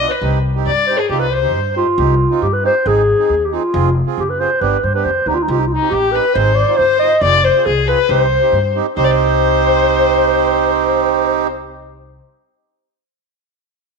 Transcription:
0.00 0.11 B3 medium
0.00 0.11 D4 medium
0.00 0.11 F4 medium
0.00 0.13 D#5 loud
0.09 0.30 B4 medium
0.09 0.33 B4 medium
0.21 0.67 C2 loud
0.21 0.39 C4 medium
0.21 0.39 D#4 medium
0.21 0.39 G4 medium
0.55 0.72 C4 medium
0.55 0.72 D#4 medium
0.55 0.72 G4 medium
0.66 0.92 G2 medium
0.66 0.88 D5 medium
0.66 1.00 D5 medium
0.87 1.00 C4 medium
0.87 1.00 D#4 medium
0.87 1.00 G4 medium
0.87 0.99 C5 medium
0.97 1.09 G#4 medium
0.97 1.10 G#4 medium
1.09 1.54 C2 medium
1.09 1.27 C4 medium
1.09 1.27 D#4 medium
1.09 1.27 F4 medium
1.09 1.21 G4 medium
1.19 1.32 B4 medium
1.19 1.34 B4 medium
1.31 1.76 C5 medium
1.31 1.77 C5 medium
1.43 1.60 C4 medium
1.43 1.60 D#4 soft
1.43 1.60 G4 medium
1.54 1.81 G2 medium
1.75 1.87 C4 medium
1.75 1.87 D#4 soft
1.75 2.39 F4 medium
1.75 1.87 G4 medium
1.97 2.24 C2 loud
1.97 2.14 C4 medium
1.97 2.15 D#4 medium
1.97 2.15 G4 medium
2.30 2.47 C4 medium
2.30 2.47 D#4 medium
2.30 2.47 F4 medium
2.42 2.68 G2 medium
2.42 2.55 G4 medium
2.53 2.64 B4 medium
2.63 2.75 C4 medium
2.63 2.75 D#4 medium
2.63 2.75 G4 medium
2.63 2.89 C5 loud
2.85 3.12 G#1 loud
2.85 3.02 C4 medium
2.85 3.02 D#4 medium
2.85 3.02 G#4 medium
2.85 3.47 G#4 loud
3.18 3.35 C4 medium
3.18 3.35 D#4 medium
3.18 3.35 G#4 medium
3.29 3.56 D#2 medium
3.45 3.55 G4 medium
3.52 3.63 C4 medium
3.52 3.63 D#4 medium
3.52 3.97 F4 medium
3.52 3.63 G#4 medium
3.72 4.00 F1 loud
3.72 3.89 C4 medium
3.72 3.90 F4 medium
3.72 3.90 G#4 medium
4.06 4.23 C4 medium
4.06 4.23 F4 medium
4.06 4.23 G#4 medium
4.18 4.44 F#1 medium
4.18 4.31 G4 medium
4.30 4.42 B4 medium
4.39 4.50 C4 medium
4.39 4.50 F4 medium
4.39 4.50 G#4 medium
4.39 4.63 C5 medium
4.61 4.74 G1 loud
4.61 4.77 B3 medium
4.61 4.77 D4 medium
4.61 4.77 G4 medium
4.61 4.85 B4 medium
4.83 5.03 G2 medium
4.83 4.94 C5 medium
4.94 5.11 B3 medium
4.94 5.11 D4 soft
4.94 5.11 G4 medium
4.94 5.06 B4 medium
5.04 5.25 F2 medium
5.04 5.29 C5 medium
5.26 5.46 D2 medium
5.26 5.38 B3 medium
5.26 5.38 D4 medium
5.26 5.36 D#4 medium
5.26 5.38 G4 medium
5.35 5.44 F4 medium
5.43 5.52 D#4 medium
5.48 5.75 C2 loud
5.48 5.65 C4 medium
5.48 5.65 D#4 medium
5.48 5.61 F4 medium
5.48 5.65 G4 medium
5.59 5.69 D#4 medium
5.68 5.75 F4 medium
5.73 5.92 D#4 medium
5.73 5.95 D#4 medium
5.82 5.98 C4 medium
5.82 5.98 D#4 medium
5.82 5.98 G4 medium
5.90 6.18 A1 loud
5.90 6.13 G4 medium
5.90 6.17 G4 medium
6.12 6.25 C4 medium
6.12 6.25 D#4 medium
6.12 6.25 G4 medium
6.12 6.34 B4 medium
6.12 6.37 B4 medium
6.34 6.62 G#1 loud
6.34 6.52 C4 medium
6.34 6.52 D#4 medium
6.34 6.53 G#4 medium
6.34 6.56 C5 medium
6.34 6.78 C5 loud
6.55 6.78 D5 medium
6.68 6.85 C4 medium
6.68 6.85 D#4 medium
6.68 6.85 F4 medium
6.77 7.05 G1 medium
6.77 6.99 C5 loud
6.77 7.20 C5 loud
6.99 7.12 C4 medium
6.99 7.12 D#4 medium
6.99 7.13 F4 medium
6.99 7.24 D#5 loud
7.21 7.48 F1 loud
7.21 7.40 C4 medium
7.21 7.40 F4 medium
7.21 7.40 G#4 medium
7.21 7.46 D5 loud
7.44 7.68 C5 medium
7.44 7.66 C5 medium
7.56 7.72 C4 medium
7.56 7.72 F4 medium
7.56 7.72 G#4 medium
7.66 7.92 C2 loud
7.66 7.87 G#4 medium
7.66 7.89 G#4 medium
7.88 7.99 C4 medium
7.88 7.99 F4 medium
7.88 7.99 G#4 medium
7.88 8.11 B4 medium
7.88 8.11 B4 loud
8.09 8.36 C2 loud
8.09 8.26 C4 medium
8.09 8.26 D#4 medium
8.09 8.26 G4 medium
8.09 8.75 C5 medium
8.42 8.59 C4 medium
8.42 8.59 D#4 medium
8.42 8.59 G4 medium
8.52 8.79 G2 loud
8.75 8.86 C4 medium
8.75 8.86 D#4 medium
8.75 8.86 G4 medium
8.97 12.17 C2 loud
8.97 11.47 C4 medium
8.97 11.47 D#4 medium
8.97 11.47 G4 medium
8.97 9.06 C5 medium
8.97 11.48 C5 medium
9.04 9.13 D5 medium
9.11 11.51 C5 loud

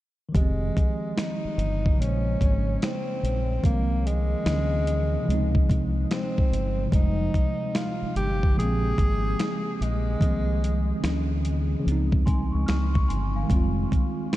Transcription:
0.29 1.93 D#3 medium
0.29 1.95 F3 medium
0.34 0.70 F1 loud
0.34 1.20 G#3 medium
0.34 1.98 G#3 medium
0.34 1.96 G4 medium
0.34 kick loud
0.34 closed hi-hat medium
0.41 1.99 C4 medium
0.77 kick medium
0.77 closed hi-hat medium
1.18 2.02 D#4 medium
1.18 finger snap medium
1.18 snare loud
1.18 closed hi-hat medium
1.45 muted fingered electric bass stroke soft
1.58 1.93 G1 medium
1.58 closed hi-hat medium
1.86 kick medium
1.93 3.57 C#3 medium
1.93 3.59 F3 medium
2.00 2.35 A#1 medium
2.00 3.61 G#3 medium
2.00 3.62 A#3 medium
2.00 2.82 C#4 medium
2.00 closed hi-hat medium
2.06 3.64 C5 medium
2.41 2.76 G#1 medium
2.41 kick medium
2.41 closed hi-hat medium
2.82 3.61 C4 medium
2.82 finger snap medium
2.82 snare loud
2.82 closed hi-hat medium
3.23 3.58 A#1 medium
3.23 closed hi-hat medium
3.61 4.34 C2 medium
3.61 4.44 D#3 medium
3.61 4.45 F3 medium
3.61 4.46 G#3 medium
3.61 kick loud
3.65 4.08 A#3 medium
3.65 4.47 A#3 medium
3.65 4.48 C4 medium
3.65 closed hi-hat medium
4.07 5.89 G#3 loud
4.07 closed hi-hat medium
4.43 5.16 D2 medium
4.43 5.27 D3 medium
4.43 5.28 E3 medium
4.43 4.55 F3 soft
4.43 finger snap medium
4.43 snare loud
4.48 5.30 C#4 medium
4.48 closed hi-hat medium
4.53 5.32 F#3 medium
4.87 closed hi-hat medium
5.22 6.85 C3 medium
5.22 6.88 F3 medium
5.28 5.63 C#2 medium
5.28 6.89 G#3 medium
5.28 6.91 C4 medium
5.28 closed hi-hat medium
5.34 6.92 D#4 medium
5.55 kick medium
5.70 6.05 C2 medium
5.70 kick medium
5.70 closed hi-hat medium
6.11 6.89 C4 medium
6.11 finger snap medium
6.11 snare loud
6.11 closed hi-hat medium
6.38 kick medium
6.52 6.87 G1 medium
6.52 closed hi-hat medium
6.87 8.50 C3 medium
6.87 8.52 F3 medium
6.92 7.28 F1 loud
6.92 8.54 G3 medium
6.92 8.55 G#3 medium
6.92 7.78 D#4 medium
6.92 kick loud
6.92 closed hi-hat medium
6.99 8.57 D#4 medium
7.34 kick medium
7.34 closed hi-hat medium
7.75 8.16 F4 medium
7.75 finger snap medium
7.75 snare loud
7.75 closed hi-hat medium
8.02 muted fingered electric bass stroke soft
8.16 8.51 G1 medium
8.16 8.54 G4 loud
8.16 closed hi-hat medium
8.43 kick medium
8.51 10.15 C#3 medium
8.51 10.17 F3 medium
8.57 8.92 A#1 loud
8.57 10.18 G#3 medium
8.57 10.20 A#3 medium
8.57 9.84 G#4 loud
8.57 closed hi-hat medium
8.64 10.21 C4 medium
8.98 9.33 G#1 medium
8.98 kick medium
8.98 closed hi-hat medium
9.39 finger snap medium
9.39 snare loud
9.39 closed hi-hat medium
9.81 10.16 A#1 medium
9.81 11.46 G#3 loud
9.81 closed hi-hat medium
10.18 10.91 C2 medium
10.18 11.02 D#3 medium
10.18 11.03 F3 medium
10.18 11.04 G#3 medium
10.18 kick loud
10.22 11.04 A#3 medium
10.22 11.05 C4 medium
10.22 closed hi-hat medium
10.64 closed hi-hat medium
11.00 11.74 D2 medium
11.00 11.84 D3 medium
11.00 11.85 E3 medium
11.00 11.85 F#3 medium
11.00 snare loud
11.05 11.87 C#4 medium
11.05 finger snap medium
11.05 closed hi-hat medium
11.45 closed hi-hat medium
11.80 13.44 C#3 medium
11.80 13.45 F3 medium
11.86 12.21 C#2 medium
11.86 13.47 G#3 medium
11.86 13.48 C4 medium
11.86 closed hi-hat medium
11.92 13.50 D#4 medium
12.12 kick loud
12.26 12.50 C2 medium
12.26 12.52 G#5 medium
12.26 12.52 C6 medium
12.26 kick medium
12.26 closed hi-hat medium
12.52 12.66 C#2 medium
12.52 12.66 C#6 medium
12.66 13.03 C#2 medium
12.66 12.93 C#6 medium
12.66 12.93 F6 medium
12.66 finger snap medium
12.66 snare loud
12.66 closed hi-hat medium
12.94 13.08 C#6 medium
12.94 kick medium
13.08 13.44 G1 medium
13.08 13.34 G#5 medium
13.08 13.34 C6 medium
13.08 closed hi-hat medium
13.35 13.75 F5 medium
13.35 13.75 G#5 medium
13.43 14.37 D#3 medium
13.43 14.37 G3 medium
13.50 13.85 F1 loud
13.50 14.37 G#3 medium
13.50 14.37 C4 medium
13.50 kick loud
13.50 closed hi-hat medium
13.56 14.37 F4 medium
13.92 kick medium
13.92 closed hi-hat medium
14.33 snare loud

